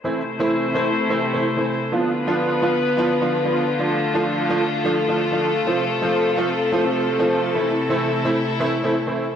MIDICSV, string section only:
0, 0, Header, 1, 2, 480
1, 0, Start_track
1, 0, Key_signature, 0, "minor"
1, 0, Tempo, 468750
1, 46, Time_signature, 4, 2, 24, 8
1, 9583, End_track
2, 0, Start_track
2, 0, Title_t, "String section"
2, 0, Program_c, 0, 48
2, 46, Note_on_c, 0, 48, 72
2, 46, Note_on_c, 0, 57, 68
2, 46, Note_on_c, 0, 64, 68
2, 47, Note_on_c, 0, 72, 82
2, 1947, Note_off_c, 0, 48, 0
2, 1947, Note_off_c, 0, 57, 0
2, 1947, Note_off_c, 0, 64, 0
2, 1947, Note_off_c, 0, 72, 0
2, 1966, Note_on_c, 0, 50, 76
2, 1966, Note_on_c, 0, 59, 68
2, 1966, Note_on_c, 0, 65, 70
2, 1966, Note_on_c, 0, 71, 83
2, 3867, Note_off_c, 0, 59, 0
2, 3867, Note_off_c, 0, 71, 0
2, 3886, Note_on_c, 0, 57, 73
2, 3886, Note_on_c, 0, 69, 84
2, 5768, Note_off_c, 0, 50, 0
2, 5805, Note_on_c, 0, 48, 76
2, 7685, Note_off_c, 0, 65, 0
2, 7726, Note_on_c, 0, 64, 70
2, 9583, Note_off_c, 0, 48, 0
2, 9583, Note_off_c, 0, 57, 0
2, 9583, Note_off_c, 0, 64, 0
2, 9583, Note_off_c, 0, 69, 0
2, 9583, End_track
0, 0, End_of_file